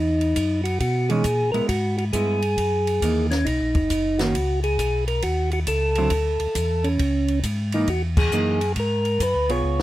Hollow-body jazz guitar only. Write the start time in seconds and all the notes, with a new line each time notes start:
1.10 E3 G#3 C#4 D#4
1.54 G#3 B3 E4
2.14 G#3 B3 E4
3.03 E3 A#3 D#4
4.21 D#3 A#3 C#4
5.98 D3 F#3 C4 E4
7.74 E3 A#3 D#4
8.33 E3 A#3 D#4
9.49 B3 F4 G#4